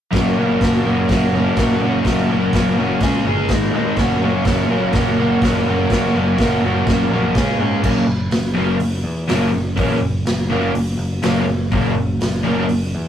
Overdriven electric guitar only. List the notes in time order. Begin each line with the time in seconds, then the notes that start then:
0.11 F#2 C#3 F#3 A#3 C#4 F#4
0.36 F#2 C#3 F#3 A#3 C#4 F#4
0.60 F#2 C#3 F#3 A#3 C#4 F#4
0.84 F#2 C#3 F#3 A#3 C#4 F#4
1.08 F#2 C#3 F#3 A#3 C#4 F#4
1.33 F#2 C#3 F#3 A#3 C#4 F#4
1.57 F#2 C#3 F#3 A#3 C#4 F#4
1.81 F#2 C#3 F#3 A#3 C#4 F#4
2.04 F#2 C#3 F#3 A#3 C#4 F#4
2.29 F#2 C#3 F#3 A#3 C#4 F#4
2.52 F#2 C#3 F#3 A#3 C#4 F#4
2.76 F#2 C#3 F#3 A#3 C#4 F#4
3.01 C#3 G#3 C#4 G#4
3.26 C#3 G#3 C#4 G#4
3.50 G#2 D#3 G#3 D#4
3.73 G#2 D#3 G#3 D#4
3.97 F#2 C#3 F#3 A#3 C#4 F#4
4.20 F#2 C#3 F#3 A#3 C#4
4.24 F#4
4.44 F#2 C#3 F#3 A#3 C#4 F#4
4.68 F#2 C#3 F#3 A#3 C#4 F#4
4.92 F#2 C#3 F#3 A#3 C#4 F#4
5.18 F#2 C#3 F#3 A#3 C#4 F#4
5.41 F#2 C#3 F#3 A#3 C#4 F#4
5.66 F#2 C#3 F#3 A#3 C#4 F#4
5.90 F#2 C#3 F#3 A#3 C#4 F#4
6.14 F#2 C#3 F#3 A#3 C#4 F#4
6.38 F#2 C#3 F#3 A#3 C#4 F#4
6.62 F#2 C#3 F#3 A#3 C#4 F#4
6.86 F#2 C#3 F#3 A#3 C#4 F#4
7.10 F#2 C#3 F#3 A#3 C#4 F#4
7.35 C#3 G#3 C#4 G#4
7.59 C#3 G#3 C#4 G#4
7.82 F#2 C#3 F#3 A#3 C#4
8.54 F#2 C#3 F#3 A#3 C#4
9.28 F#2 C#3 F#3 A#3 C#4
9.76 F#2 C#3 F#3 A#3 C#4
10.50 F#2 C#3 F#3 A#3 C#4
11.23 F#2 C#3 F#3 A#3 C#4
11.72 F#2 C#3 F#3 A#3 C#4
12.43 F#2 C#3 F#3 A#3 C#4